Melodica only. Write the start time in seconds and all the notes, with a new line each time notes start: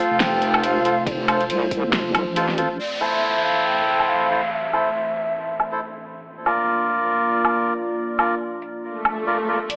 Already playing: F4 A4 C5
0.85 F4 A4 C5
1.28 F4 A4 C5
2.36 F4 A4 C5
2.58 F4 A4 C5
3.01 E4 A4 C5
4.30 E4 A4 C5
4.73 E4 A4 C5
5.72 E4 A4 C5
6.46 F4 A#4 D5
8.19 F4 A#4 D5
9.27 F4 A#4 D5
9.48 F4 A#4 D5